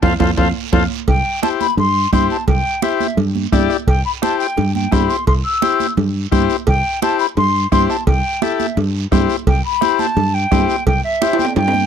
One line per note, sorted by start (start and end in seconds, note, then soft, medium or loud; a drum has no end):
0.02 0.16 F2 loud
0.02 0.14 F4 medium
0.02 0.14 A4 medium
0.02 0.14 C5 medium
0.02 0.14 F5 loud
0.02 bombo low medium
0.02 high conga loud
0.02 high timbale loud
0.02 long guiro medium
0.19 0.33 F2 medium
0.19 0.31 F4 medium
0.19 0.31 A4 loud
0.19 0.31 C5 medium
0.19 0.32 F5 medium
0.19 bombo low medium
0.19 high conga loud
0.19 high timbale loud
0.19 long guiro loud
0.37 0.51 F2 medium
0.37 0.49 F4 medium
0.37 0.48 A4 medium
0.37 0.49 C5 loud
0.37 0.49 F5 medium
0.37 bombo low medium
0.37 high conga medium
0.37 high timbale medium
0.37 long guiro medium
0.72 0.86 F2 medium
0.72 0.84 F4 loud
0.72 0.84 A4 medium
0.72 0.84 C5 medium
0.72 0.84 F5 medium
0.72 bombo low medium
0.72 high conga medium
0.72 high timbale medium
1.08 1.22 C2 loud
1.08 1.40 G5 medium
1.08 bombo low medium
1.08 cowbell medium
1.08 high conga soft
1.08 low conga medium
1.08 long guiro medium
1.42 1.67 E4 medium
1.42 1.67 G4 medium
1.42 1.67 C5 medium
1.42 1.49 A5 medium
1.42 bombo rim medium
1.42 high conga loud
1.42 short guiro medium
1.60 1.77 B5 loud
1.60 high conga medium
1.60 short guiro medium
1.77 2.05 G2 medium
1.77 2.11 C6 loud
1.77 cowbell medium
1.77 high conga soft
1.77 low conga medium
1.77 long guiro medium
2.12 2.27 G2 loud
2.12 2.37 E4 medium
2.12 2.37 G4 medium
2.12 2.37 C5 medium
2.12 2.29 C6 loud
2.12 bombo low medium
2.12 bombo rim medium
2.12 high conga medium
2.12 short guiro medium
2.30 2.47 A5 medium
2.30 short guiro medium
2.48 2.62 C2 medium
2.48 2.84 G5 loud
2.48 bombo low medium
2.48 cowbell loud
2.48 high conga soft
2.48 low conga medium
2.48 long guiro medium
2.82 3.07 E4 medium
2.82 3.07 G4 medium
2.82 3.07 C5 medium
2.82 3.17 E5 medium
2.82 bombo rim medium
2.82 high conga loud
2.82 short guiro medium
3.00 high conga medium
3.00 short guiro medium
3.17 3.45 G2 medium
3.17 cowbell medium
3.17 high conga soft
3.17 low conga medium
3.17 long guiro medium
3.35 high conga medium
3.52 3.66 G2 medium
3.52 3.77 E4 medium
3.52 3.77 G4 medium
3.52 3.77 D5 loud
3.52 bombo low medium
3.52 bombo rim medium
3.52 high conga medium
3.52 low timbale medium
3.52 short guiro medium
3.70 bombo rim medium
3.70 short guiro medium
3.87 4.01 C2 loud
3.87 4.04 G5 medium
3.87 bombo low medium
3.87 cowbell loud
3.87 high conga soft
3.87 long guiro medium
4.05 4.11 B5 medium
4.22 4.47 E4 medium
4.22 4.47 G4 medium
4.22 4.47 C5 medium
4.22 4.39 A5 medium
4.22 bombo rim medium
4.22 high conga medium
4.22 short guiro medium
4.40 4.72 G5 medium
4.40 short guiro medium
4.57 4.86 G2 loud
4.57 cowbell medium
4.57 high conga soft
4.57 low conga medium
4.57 long guiro medium
4.75 4.93 G5 medium
4.75 high conga medium
4.91 5.06 G2 loud
4.91 5.16 E4 medium
4.91 5.17 G4 medium
4.91 5.17 C5 medium
4.91 5.11 B5 medium
4.91 bombo low medium
4.91 bombo rim medium
4.91 high conga medium
4.91 low timbale medium
4.91 short guiro medium
5.09 5.27 C6 medium
5.09 short guiro medium
5.27 5.41 C2 loud
5.27 5.33 C6 medium
5.27 bombo low medium
5.27 cowbell loud
5.27 high conga soft
5.27 long guiro medium
5.44 5.93 E6 loud
5.62 5.87 E4 medium
5.62 5.87 G4 medium
5.62 5.87 C5 medium
5.62 bombo rim medium
5.62 high conga medium
5.62 short guiro medium
5.80 high conga medium
5.80 short guiro medium
5.97 6.25 G2 medium
5.97 cowbell medium
5.97 high conga soft
5.97 low conga medium
5.97 long guiro medium
6.32 6.46 G2 loud
6.32 6.56 E4 medium
6.32 6.57 G4 medium
6.32 6.57 C5 loud
6.32 bombo low medium
6.32 bombo rim medium
6.32 high conga medium
6.32 short guiro medium
6.50 short guiro medium
6.67 6.81 C2 loud
6.67 7.00 G5 loud
6.67 bombo low medium
6.67 cowbell loud
6.67 high conga soft
6.67 long guiro medium
7.02 7.27 E4 medium
7.02 7.27 G4 medium
7.02 7.27 C5 medium
7.02 7.19 A5 loud
7.02 bombo rim medium
7.02 high conga medium
7.02 short guiro medium
7.19 7.26 B5 medium
7.19 short guiro medium
7.37 7.65 G2 loud
7.37 7.70 C6 loud
7.37 cowbell medium
7.37 high conga soft
7.37 low conga medium
7.37 long guiro medium
7.72 7.86 G2 loud
7.72 7.96 E4 medium
7.72 7.97 G4 medium
7.72 7.97 C5 medium
7.72 7.88 C6 loud
7.72 bombo low medium
7.72 bombo rim medium
7.72 high conga medium
7.72 short guiro medium
7.90 8.06 A5 medium
7.90 bombo rim medium
7.90 short guiro medium
8.07 8.21 C2 loud
8.07 8.44 G5 medium
8.07 bombo low medium
8.07 cowbell loud
8.07 high conga soft
8.07 low conga medium
8.07 long guiro medium
8.42 8.66 E4 medium
8.42 8.67 G4 medium
8.42 8.67 A4 medium
8.42 8.77 E5 medium
8.42 bombo rim medium
8.42 high conga loud
8.42 short guiro medium
8.60 high conga medium
8.60 short guiro medium
8.77 9.05 G2 loud
8.77 cowbell medium
8.77 high conga soft
8.77 low conga medium
8.77 long guiro medium
9.12 9.26 G2 loud
9.12 9.36 E4 medium
9.12 9.36 G4 medium
9.12 9.37 C5 medium
9.12 bombo low medium
9.12 bombo rim medium
9.12 high conga medium
9.12 low conga medium
9.12 low timbale medium
9.12 short guiro medium
9.30 short guiro medium
9.47 9.61 C2 loud
9.47 9.64 G5 medium
9.47 bombo low medium
9.47 cowbell loud
9.47 high conga soft
9.47 low conga medium
9.47 long guiro medium
9.65 10.01 B5 loud
9.81 10.06 E4 medium
9.81 10.07 G4 medium
9.81 10.07 C5 medium
9.81 bombo rim medium
9.81 high conga medium
9.81 short guiro medium
9.99 10.36 A5 loud
9.99 high conga medium
9.99 short guiro medium
10.17 10.45 G2 loud
10.17 cowbell medium
10.17 high conga soft
10.17 low conga medium
10.17 long guiro medium
10.34 10.86 G5 medium
10.51 10.66 G2 loud
10.51 10.76 E4 medium
10.51 10.76 G4 medium
10.51 10.76 C5 medium
10.51 bombo low medium
10.51 bombo rim medium
10.51 high conga medium
10.51 low conga medium
10.51 low timbale medium
10.51 short guiro medium
10.69 short guiro medium
10.87 11.01 C2 loud
10.87 11.03 G5 loud
10.87 bombo low medium
10.87 cowbell loud
10.87 high conga soft
10.87 low conga medium
10.87 long guiro medium
11.04 11.37 E5 medium
11.22 11.46 E4 medium
11.22 11.46 G4 medium
11.22 11.46 C5 medium
11.22 bombo rim medium
11.22 high conga loud
11.22 high timbale medium
11.22 short guiro medium
11.33 high timbale medium
11.39 11.56 G5 medium
11.39 high conga medium
11.39 short guiro medium
11.45 low timbale medium
11.56 11.84 G2 loud
11.56 11.86 G5 loud
11.56 cowbell medium
11.56 high conga soft
11.56 low conga medium
11.56 high timbale medium
11.56 long guiro medium
11.68 low timbale medium
11.74 high conga medium